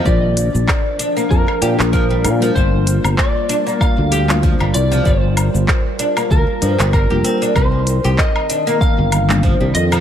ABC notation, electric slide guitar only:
X:1
M:4/4
L:1/8
Q:"Swing 16ths" 1/4=96
K:Gm
V:1 name="Electric slide guitar"
d3 z B2 B2 | c2 d2 f2 z d | c3 z B2 B2 | c2 e2 f2 z e |]